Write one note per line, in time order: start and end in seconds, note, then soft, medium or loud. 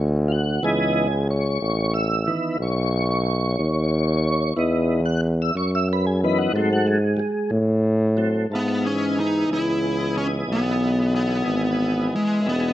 0.00 0.60 D2 loud
0.28 0.32 F4 medium
0.28 0.63 F#4 medium
0.62 1.58 C#2 loud
0.62 1.07 E3 medium
0.62 1.07 B3 soft
0.62 1.08 D#4 medium
0.62 1.28 G#4 medium
1.31 1.93 C#5 loud
1.61 2.31 A1 medium
1.94 2.58 E5 loud
2.27 2.57 D#3 medium
2.27 2.57 E3 medium
2.27 2.57 B3 soft
2.59 3.55 B1 medium
2.59 4.54 C#5 loud
3.59 4.54 D#2 loud
4.56 5.51 E2 medium
4.56 5.00 E3 medium
4.56 5.00 B3 medium
4.56 5.01 D#4 medium
5.05 5.21 F#5 loud
5.42 5.56 E5 medium
5.54 6.50 F#2 medium
5.54 5.71 C#5 loud
5.75 5.88 E5 loud
5.93 6.06 B4 loud
6.07 6.21 G#4 loud
6.24 6.52 E3 medium
6.24 6.52 B3 soft
6.24 6.52 D#4 medium
6.24 6.38 B4 medium
6.39 6.53 F#4 medium
6.53 7.22 G#2 loud
6.53 6.98 F#3 medium
6.53 6.98 A3 medium
6.53 6.70 C4 medium
6.73 6.86 F#4 loud
6.87 7.18 G#3 medium
7.17 7.20 G3 medium
7.17 7.51 G#3 loud
7.51 8.46 A2 loud
8.17 8.46 F#3 soft
8.17 8.47 A3 soft
8.17 8.47 C4 medium
8.50 9.45 G#2 medium
8.50 8.83 B3 soft
8.50 8.84 E4 medium
8.50 8.84 F4 medium
8.50 8.83 A4 soft
8.55 8.86 B3 medium
8.84 12.41 E3 medium
8.84 12.40 B3 medium
8.84 9.18 C#4 medium
8.84 12.40 G#4 medium
8.84 12.40 D#5 medium
9.20 9.48 D#4 medium
9.47 10.43 C#2 medium
9.54 10.17 E4 medium
10.17 10.26 C#4 medium
10.46 11.42 B1 medium
10.52 11.14 B3 medium
11.15 12.15 B3 medium
11.45 12.14 G#1 medium
12.16 12.47 G#3 medium
12.41 12.73 E1 medium
12.41 12.73 B3 medium
12.41 12.73 D#4 medium
12.41 12.73 E4 medium
12.41 12.73 G#4 medium
12.49 12.73 B3 medium